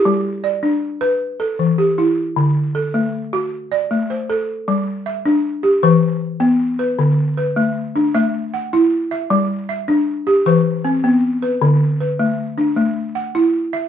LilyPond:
<<
  \new Staff \with { instrumentName = "Balafon" } { \time 12/8 \key g \major \tempo 4. = 104 g'16 r8. d''4. r4 a'4 g'4. | r4 a'4. r4 d''4 c''4. | r4 e''4. g'8 b'4. r4 b'8~ | b'8 r8 b'4. d'8 e''4 fis''4. e''8~ |
e''8 r8 e''4. g'8 b'4 c'4. b'8~ | b'8 r8 b'4. d'4 r8 fis''4. e''8 | }
  \new Staff \with { instrumentName = "Balafon" } { \time 12/8 \key g \major g4 r8 d'4 b'8 r4 e4 e'4 | d4 r8 a4 fis'8 r4 a4 a'4 | g4 r8 d'4 r8 e4 r8 b4 r8 | d4 r8 a4 r8 a4 r8 e'4 r8 |
g4 r8 d'4 r8 e4 r8 b4 r8 | d4 r8 a4 r8 a4 r8 e'4 r8 | }
>>